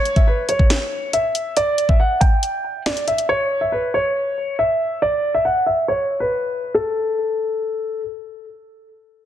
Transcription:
0.00 0.14 C#5 loud
0.05 closed hi-hat medium
0.16 0.25 E5 medium
0.16 kick loud
0.16 closed hi-hat soft
0.27 0.45 B4 medium
0.49 1.10 C#5 medium
0.49 closed hi-hat medium
0.59 kick medium
0.70 snare loud
0.70 closed hi-hat medium
1.13 1.54 E5 medium
1.13 closed hi-hat medium
1.35 closed hi-hat medium
1.57 1.87 D5 loud
1.57 closed hi-hat medium
1.78 closed hi-hat medium
1.89 1.98 E5 medium
1.89 kick loud
2.00 2.18 F#5 medium
2.21 2.82 G5 medium
2.21 kick loud
2.21 closed hi-hat medium
2.43 closed hi-hat medium
2.86 3.04 D5 medium
2.86 snare loud
2.86 closed hi-hat medium
2.97 closed hi-hat medium
3.08 3.26 E5 medium
3.08 closed hi-hat medium
3.18 closed hi-hat medium
3.29 3.59 C#5 loud
3.61 3.70 E5 medium
3.72 3.90 B4 medium
3.94 4.55 C#5 medium
4.59 4.99 E5 medium
5.02 5.32 D5 loud
5.34 5.43 E5 medium
5.45 5.63 F#5 medium
5.66 5.85 E5 medium
5.88 6.19 C#5 medium
6.20 6.71 B4 medium
6.74 8.00 A4 medium

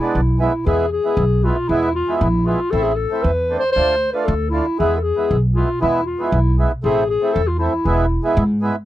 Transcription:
0.00 0.20 G#3 medium
0.00 0.20 B3 medium
0.00 0.21 D4 medium
0.00 0.40 E4 medium
0.15 0.46 B1 medium
0.39 0.52 G#3 medium
0.39 0.53 B3 medium
0.39 0.64 E4 medium
0.39 0.53 E4 medium
0.66 0.97 E2 medium
0.66 0.85 G#3 medium
0.66 0.85 B3 medium
0.66 0.86 E4 medium
0.66 0.90 G#4 medium
0.92 1.46 G#4 medium
1.04 1.24 G#3 medium
1.04 1.24 B3 medium
1.04 1.25 E4 medium
1.17 1.48 B1 loud
1.43 1.56 G#3 medium
1.43 1.57 B3 medium
1.43 1.57 E4 medium
1.43 1.70 F4 medium
1.68 2.00 E2 medium
1.68 1.89 G#3 medium
1.68 1.89 B3 medium
1.68 1.95 E4 loud
1.68 1.90 E4 medium
1.95 2.16 F4 medium
2.08 2.27 G#3 medium
2.08 2.28 B3 medium
2.08 2.28 E4 medium
2.16 2.48 E4 medium
2.16 2.21 F4 medium
2.21 2.52 A#1 loud
2.46 2.59 G#3 medium
2.46 2.60 B3 medium
2.46 2.60 E4 medium
2.46 2.72 F4 medium
2.71 3.04 A1 medium
2.71 2.92 A3 medium
2.71 2.92 C4 medium
2.71 2.93 E4 medium
2.71 2.84 A4 loud
2.82 2.97 G#4 medium
2.96 3.24 A4 medium
3.10 3.30 A3 medium
3.10 3.31 C4 medium
3.10 3.31 E4 medium
3.22 3.55 E2 medium
3.22 3.59 B4 loud
3.50 3.63 A3 medium
3.50 3.63 C4 medium
3.50 3.64 D4 medium
3.59 3.71 C5 loud
3.72 4.07 D2 medium
3.72 3.95 A3 medium
3.72 3.95 D4 medium
3.72 4.10 C5 loud
3.76 3.96 F4 medium
4.13 4.33 A3 medium
4.13 4.34 D4 medium
4.13 4.34 F4 medium
4.13 4.26 B4 medium
4.25 4.59 D2 loud
4.25 4.49 A4 loud
4.50 4.65 A3 medium
4.50 4.66 D4 medium
4.50 4.75 E4 medium
4.50 4.66 F4 medium
4.78 5.11 E2 medium
4.78 4.98 G#3 medium
4.78 4.98 B3 medium
4.78 4.99 E4 medium
4.78 4.96 G#4 loud
4.97 5.04 A4 medium
5.02 5.39 G#4 medium
5.16 5.36 G#3 medium
5.16 5.36 B3 medium
5.16 5.37 E4 medium
5.31 5.61 B1 loud
5.55 5.68 G#3 medium
5.55 5.69 B3 medium
5.55 5.69 E4 medium
5.55 5.79 F4 medium
5.80 6.13 E2 medium
5.80 6.00 G#3 medium
5.80 6.01 B3 medium
5.80 6.05 E4 medium
5.80 6.01 E4 medium
6.06 6.31 F4 medium
6.19 6.39 G#3 medium
6.19 6.39 B3 medium
6.19 6.40 E4 medium
6.32 6.63 B1 loud
6.32 6.57 E4 medium
6.58 6.71 G#3 medium
6.58 6.72 B3 soft
6.58 6.72 E4 medium
6.84 7.15 A1 medium
6.84 7.03 A3 medium
6.84 7.04 C4 medium
6.84 7.04 E4 medium
6.84 7.08 G#4 loud
7.09 7.34 G#4 loud
7.21 7.41 A3 medium
7.21 7.42 C4 medium
7.21 7.42 E4 medium
7.33 7.66 E2 loud
7.33 7.49 A4 loud
7.47 7.58 F4 medium
7.58 7.73 A3 medium
7.58 7.73 C4 medium
7.58 8.58 E4 medium
7.58 7.74 E4 medium
7.85 8.16 E1 medium
7.85 8.05 G#3 medium
7.85 8.06 B3 medium
7.85 8.06 E4 medium
8.24 8.44 G#3 medium
8.24 8.44 B3 medium
8.24 8.44 E4 medium
8.37 8.68 G#2 loud
8.61 8.75 G#3 medium
8.61 8.76 B3 medium
8.61 8.76 E4 medium

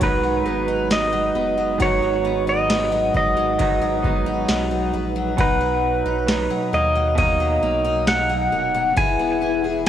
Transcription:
0.00 0.42 B1 loud
0.00 0.45 G#2 medium
0.00 0.46 D#3 medium
0.00 0.23 F#3 medium
0.00 0.46 F#3 medium
0.00 5.35 G#3 medium
0.00 0.45 B3 medium
0.00 0.46 B3 medium
0.00 0.67 D#4 medium
0.00 5.35 D#4 medium
0.00 0.44 D#4 medium
0.00 5.35 F#4 medium
0.00 5.35 B4 medium
0.00 0.94 B4 medium
0.00 kick loud
0.00 ride medium
0.23 1.12 F#3 medium
0.45 1.31 G#1 loud
0.45 0.90 B3 medium
0.45 1.83 B3 soft
0.45 1.85 D#4 soft
0.50 1.81 F#3 soft
0.68 2.47 D#4 medium
0.90 1.35 B3 medium
0.90 1.82 D#5 loud
0.90 snare loud
0.90 ride medium
0.90 tambourine medium
1.12 1.57 F#3 medium
1.35 1.78 F#1 medium
1.35 2.24 B3 medium
1.58 1.79 F#3 medium
1.78 3.10 G#1 loud
1.78 3.57 G#2 medium
1.78 3.59 D#3 medium
1.78 2.02 F#3 medium
1.78 2.89 F#4 medium
1.78 kick loud
1.78 ride medium
1.82 3.60 F#3 medium
1.82 3.60 B3 medium
1.82 3.61 D#4 loud
1.82 2.44 C#5 loud
2.02 2.92 F#3 medium
2.25 2.69 B3 medium
2.47 4.26 D#4 medium
2.47 3.16 D#5 loud
2.70 3.14 B3 medium
2.70 snare loud
2.70 ride medium
2.70 tambourine medium
2.92 3.36 F#3 medium
3.14 3.57 G#1 loud
3.14 4.04 B3 medium
3.14 4.91 D#5 medium
3.14 kick medium
3.37 3.58 F#3 medium
3.58 4.45 G#1 loud
3.58 4.03 G#2 medium
3.58 4.04 D#3 medium
3.58 3.81 F#3 medium
3.58 4.04 F#3 medium
3.58 4.04 B3 medium
3.58 4.01 D#4 medium
3.58 kick loud
3.58 ride medium
3.81 4.71 F#3 medium
4.02 4.48 B3 medium
4.02 7.20 B3 medium
4.02 5.40 D#4 medium
4.02 kick medium
4.07 5.38 F#3 soft
4.26 6.05 D#4 medium
4.48 4.91 B1 loud
4.48 4.93 B3 medium
4.48 snare loud
4.48 ride medium
4.48 tambourine medium
4.71 5.15 F#3 medium
4.93 5.36 A#1 loud
4.93 6.72 B3 medium
5.16 5.38 F#3 medium
5.37 6.02 B1 loud
5.37 6.25 B2 medium
5.37 8.93 B2 medium
5.37 5.59 F#3 medium
5.37 6.27 F#3 medium
5.37 8.93 F#3 medium
5.37 8.93 D#4 medium
5.37 6.29 D#4 medium
5.37 6.70 B4 medium
5.37 kick loud
5.37 ride medium
5.61 6.49 F#3 medium
6.05 6.48 B1 loud
6.05 7.83 D#4 medium
6.27 7.14 B2 medium
6.27 7.17 F#3 medium
6.27 snare loud
6.27 ride medium
6.27 tambourine medium
6.31 7.19 D#4 medium
6.50 6.94 F#3 medium
6.73 7.58 D#2 loud
6.73 7.61 A#3 medium
6.73 7.17 D#5 medium
6.95 7.16 F#3 medium
7.15 8.95 B2 medium
7.15 7.39 F#3 medium
7.15 8.97 F#3 medium
7.15 8.10 D#5 loud
7.15 kick medium
7.15 ride medium
7.20 8.98 A#3 medium
7.20 8.99 D#4 medium
7.40 8.28 F#3 medium
7.62 8.48 B1 medium
7.62 8.06 A#3 medium
7.85 9.05 D#4 medium
8.07 8.51 A#3 medium
8.07 8.97 F#5 loud
8.07 snare loud
8.07 ride medium
8.07 tambourine medium
8.29 8.73 F#3 medium
8.52 8.94 D#1 medium
8.52 9.06 A#3 medium
8.74 8.96 F#3 medium
8.96 9.89 E1 loud
8.96 9.89 E3 medium
8.96 9.89 E3 loud
8.96 9.89 E4 medium
8.96 9.89 G#4 medium
8.96 9.89 B4 medium
8.96 9.86 G#5 loud
8.96 kick loud
8.96 ride medium
9.19 9.89 B3 medium
9.42 9.85 E4 medium
9.64 9.89 G#4 medium

